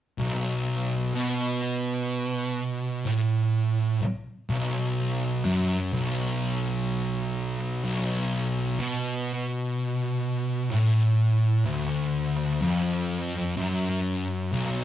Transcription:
0.18 distorted electric guitar B1
1.14 distorted electric guitar B2
3.05 distorted electric guitar A2
4.01 muted distorted electric guitar stroke
4.49 distorted electric guitar B1
5.45 distorted electric guitar F#2
5.93 distorted electric guitar B1
7.84 distorted electric guitar B1
8.79 distorted electric guitar B2
10.70 distorted electric guitar A2
11.66 distorted electric guitar D2
12.62 distorted electric guitar F2
13.57 distorted electric guitar F#2
14.52 distorted electric guitar B1

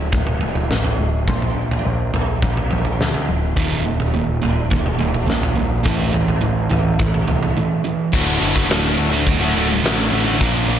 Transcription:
Already playing: picked electric bass D1, clean electric guitar D2 A2
0.12 picked electric bass D1, clean electric guitar D2 A2, kick, floor tom
0.27 mid tom
0.41 picked electric bass D1, clean electric guitar D2 A2, floor tom
0.55 floor tom
0.70 picked electric bass A1, clean electric guitar D2 A2, snare
0.84 floor tom
0.99 picked electric bass D1, clean electric guitar D2 A2
1.28 picked electric bass A#1, clean electric guitar A#2 F3 A#3, kick, floor tom
1.42 floor tom
1.56 picked electric bass A#1, clean electric guitar A#2 F3
1.71 floor tom
1.85 picked electric bass A#1, clean electric guitar A#2 F3
2.13 picked electric bass A#1, clean electric guitar A#2 F3, floor tom
2.42 picked electric bass A#1, clean electric guitar A#2 F3, kick, floor tom
2.57 mid tom
2.71 picked electric bass A#1, clean electric guitar A#2 F3, floor tom
2.85 floor tom
3.00 picked electric bass D2, clean electric guitar A#2 F3, snare
3.14 floor tom
3.28 picked electric bass D1, clean electric guitar A#2 F3
3.56 distorted electric guitar D#2 A#2 D#3, kick, floor tom
3.72 floor tom
3.85 picked electric bass D#1, distorted electric guitar D#2 A#2
4.00 floor tom
4.14 picked electric bass D#1, distorted electric guitar D#2 A#2
4.42 picked electric bass D#1, distorted electric guitar D#2 A#2, floor tom
4.70 picked electric bass D#1, distorted electric guitar D#2 A#2, kick, floor tom
4.86 mid tom
4.99 picked electric bass D#1, distorted electric guitar D#2 A#2, floor tom
5.14 floor tom
5.26 picked electric bass A#1, distorted electric guitar D#2 A#2, snare
5.43 floor tom
5.56 picked electric bass A#1, distorted electric guitar D#2 A#2
5.83 picked electric bass A1, distorted electric guitar A2 E3 A3, kick, floor tom
6.00 floor tom
6.13 picked electric bass A1, distorted electric guitar A2 E3, floor tom
6.28 floor tom
6.41 picked electric bass A1, distorted electric guitar A2 E3
6.70 picked electric bass A1, distorted electric guitar A2 E3, floor tom
6.99 picked electric bass A1, distorted electric guitar A2 E3, kick, floor tom
7.14 mid tom
7.27 picked electric bass C2, distorted electric guitar A2 E3, floor tom
7.43 floor tom
7.57 distorted electric guitar A2 E3
7.84 distorted electric guitar A2 E3
8.12 picked electric bass D1, distorted electric guitar D2 A2 D3 A3 F#4, kick, crash
8.40 picked electric bass F#1, distorted electric guitar A2 D3 A3 F#4, ride
8.54 distorted electric guitar D3 A3 F#4, kick
8.69 picked electric bass D1, distorted electric guitar D2 A2 D3 A3 F#4, snare, ride
8.97 picked electric bass D1, distorted electric guitar A2 D3 A3 F#4, muted distorted electric guitar stroke, ride
9.11 distorted electric guitar D3 A3 F#4, muted distorted electric guitar stroke
9.27 picked electric bass D1, kick, ride
9.39 distorted electric guitar D3 A3 F#4
9.54 picked electric bass D1, distorted electric guitar A2 D3 A3 F#4, ride
9.70 muted distorted electric guitar stroke
9.83 picked electric bass A1, distorted electric guitar D2 A2 D3 A3 F#4, snare, ride
9.97 distorted electric guitar D3 A3 F#4, snare
10.11 picked electric bass A1, distorted electric guitar A2 D3 A3 F#4, ride
10.25 distorted electric guitar D3 A3 F#4
10.39 picked electric bass A#1, distorted electric guitar A#2 F3 A#3 D4 F4 A#4, kick, ride
10.68 picked electric bass A#1, distorted electric guitar A#3 D4 F4 A#4, ride

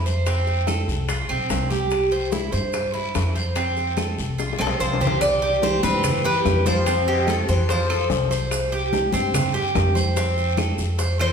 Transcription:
Already playing: upright bass F2
0.06 cuban tres C5, short guiro, maracas
0.26 cuban tres C4, high bongo, high conga, long guiro, maracas
0.47 high bongo, high conga, maracas
0.67 cuban tres A4, high bongo, high conga, short guiro, claves, maracas
0.88 upright bass C2, high bongo, high conga, short guiro, maracas
1.09 cuban tres F4, high bongo, high conga, long guiro, maracas
1.29 upright bass B1, cuban tres C4, high conga, claves, maracas
1.50 upright bass C2, high bongo, low bongo, high conga, short guiro, maracas
1.70 cuban tres G4, high bongo, high conga, short guiro, maracas
1.90 high bongo, high conga, long guiro, claves, maracas
2.11 cuban tres C5, high conga, maracas
2.32 cuban tres E4, high bongo, high conga, short guiro, maracas
2.52 upright bass G2, cuban tres C5, high conga, short guiro, maracas
2.73 high bongo, high conga, long guiro, claves, maracas
2.94 cuban tres E4, high conga, maracas
3.15 upright bass F2, high bongo, low bongo, high conga, short guiro, claves, maracas
3.36 cuban tres C5, short guiro, maracas
3.56 cuban tres C4, high bongo, high conga, long guiro, maracas
3.77 high bongo, high conga, maracas
3.97 cuban tres A4, high bongo, high conga, short guiro, claves, maracas
4.18 upright bass C2, high bongo, high conga, short guiro, maracas
4.38 cuban tres F4, high bongo, high conga, long guiro, maracas
4.53 high bongo
4.59 upright bass B1, sitar C3, cuban tres C4 A4, high conga, claves, maracas
4.67 low bongo
4.80 upright bass C2, sitar F3, cuban tres C5, short guiro, maracas
4.94 low bongo
5.01 sitar E3, cuban tres G4 C5, low conga, short guiro, maracas
5.07 low bongo
5.21 sitar G3, cuban tres D5, high bongo, high conga, long guiro, claves, maracas
5.42 cuban tres G4, high conga, maracas
5.62 sitar E3, cuban tres C5, high bongo, high conga, short guiro, maracas
5.83 upright bass G2, sitar E3, cuban tres C4 B4, high bongo, high conga, short guiro, maracas
6.04 high bongo, high conga, low conga, long guiro, claves, maracas
6.24 sitar E3, cuban tres G4 B4, high bongo, high conga, maracas
6.45 upright bass F2, high bongo, low bongo, high conga, short guiro, claves, maracas
6.65 sitar F3, cuban tres C5, high bongo, high conga, short guiro, maracas
6.86 cuban tres C4, high bongo, high conga, long guiro, maracas
7.07 sitar B2, cuban tres G4, high conga, maracas
7.27 sitar C3, cuban tres A4, high bongo, high conga, short guiro, claves, maracas
7.48 upright bass F2, sitar E3, cuban tres C5, high bongo, high conga, short guiro, maracas
7.69 sitar F3, cuban tres C5, high bongo, high conga, long guiro, maracas
7.89 cuban tres A4, high bongo, high conga, claves, maracas
8.10 upright bass C2, high bongo, low bongo, high conga, short guiro, maracas
8.31 cuban tres C5, high bongo, short guiro, maracas
8.51 high bongo, high conga, claves, maracas
8.72 cuban tres G4, high conga, maracas
8.93 high bongo, high conga, short guiro, maracas
9.12 upright bass G2, cuban tres C4, high bongo, high conga, short guiro, maracas
9.34 high bongo, high conga, low conga, long guiro, claves, maracas
9.54 cuban tres G4, high bongo, high conga, maracas
9.75 upright bass F2, high bongo, low bongo, high conga, short guiro, claves, maracas
9.95 cuban tres C5, high bongo, high conga, short guiro, maracas
10.17 cuban tres C4, high bongo, high conga, long guiro, maracas
10.37 high conga, maracas
10.57 cuban tres A4, high bongo, high conga, short guiro, claves, maracas
10.78 upright bass F2, high bongo, high conga, short guiro, maracas
10.98 cuban tres C5, high bongo, high conga, long guiro, maracas
11.19 sitar E3, cuban tres A4 C5, high bongo, high conga, claves, maracas

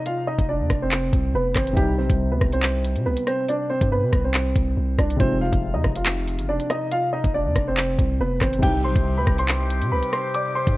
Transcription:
Already playing: felt piano C3 D#3 F3 G#3
0.06 grand piano F4 F5, closed hi-hat
0.27 grand piano D#4 D#5
0.38 808-style bass F1, kick, closed hi-hat
0.49 grand piano D4 D5
0.60 808-style bass F2
0.70 808-style bass F1, kick, cross-stick, closed hi-hat
0.82 grand piano C4 C5
0.91 clap, closed hi-hat
1.13 808-style bass C2, kick, closed hi-hat
1.34 808-style bass F1, grand piano B3 B4
1.56 808-style bass G#1, grand piano C4 C5, kick, cross-stick, clap, closed hi-hat
1.67 closed hi-hat
1.73 felt piano C3 D#3, grand piano G4
1.77 808-style bass C2, grand piano G3, felt piano G3, kick, closed hi-hat
1.81 felt piano D#4
1.98 808-style bass B1, grand piano C4 C5
2.10 808-style bass C2, kick, closed hi-hat
2.31 808-style bass D2, grand piano B3 B4
2.41 808-style bass C2, kick, cross-stick
2.52 grand piano C4 C5, closed hi-hat
2.63 clap
2.85 closed hi-hat
2.96 808-style bass C3, closed hi-hat
3.06 808-style bass C2, grand piano B3 B4
3.17 closed hi-hat
3.27 grand piano C4 C5, cross-stick, closed hi-hat
3.48 grand piano D4 D5, closed hi-hat
3.70 grand piano C4 C5
3.81 808-style bass G2, kick, closed hi-hat
3.92 grand piano B3 B4
4.03 808-style bass C3
4.13 808-style bass C2, kick, cross-stick, closed hi-hat
4.24 grand piano C4 C5
4.34 clap, closed hi-hat
4.56 808-style bass C2, kick, closed hi-hat
4.77 808-style bass C2
4.98 808-style bass C2, grand piano D4 D5, kick, cross-stick, closed hi-hat
5.10 closed hi-hat
5.16 808-style bass F1, felt piano C3 F3, grand piano C5, kick, closed hi-hat
5.21 felt piano G#3, grand piano C4
5.25 felt piano D#3
5.41 grand piano F4 F5
5.53 808-style bass F1, kick, closed hi-hat
5.74 808-style bass F2, grand piano D#4 D#5
5.84 808-style bass F1, kick, cross-stick
5.95 grand piano F4 F5, closed hi-hat
6.06 clap
6.28 closed hi-hat
6.38 808-style bass G1, closed hi-hat
6.48 808-style bass F1, grand piano D4 D5
6.60 closed hi-hat
6.70 grand piano D#4 D#5, cross-stick, closed hi-hat
6.91 grand piano F4 F5, closed hi-hat
7.13 grand piano D#4 D#5
7.24 808-style bass F1, kick, closed hi-hat
7.34 grand piano D4 D5
7.45 808-style bass F2
7.56 808-style bass F1, kick, cross-stick, closed hi-hat
7.68 grand piano C4 C5
7.77 clap, closed hi-hat
7.99 808-style bass C2, kick, closed hi-hat
8.20 808-style bass F1, grand piano B3 B4
8.41 808-style bass G#1, grand piano C4 C5, kick, cross-stick, clap, closed hi-hat
8.53 closed hi-hat
8.59 felt piano C3 D#3, grand piano G5
8.63 808-style bass C2, woodwind section C3 C4 D#4 G4, felt piano G3, grand piano G4, kick, closed hi-hat, crash
8.67 felt piano D#4
8.84 808-style bass B1, grand piano C5 C6
8.96 808-style bass C2, kick, closed hi-hat
9.17 808-style bass D2, grand piano B4 B5
9.27 808-style bass C2, kick, cross-stick
9.38 grand piano C5 C6, closed hi-hat
9.48 clap
9.70 closed hi-hat
9.81 808-style bass C3, closed hi-hat
9.91 808-style bass C2, grand piano B4 B5
10.03 closed hi-hat
10.13 grand piano C5 C6, cross-stick, closed hi-hat
10.34 grand piano D5 D6, closed hi-hat
10.55 grand piano C5 C6
10.67 808-style bass G2, kick, closed hi-hat

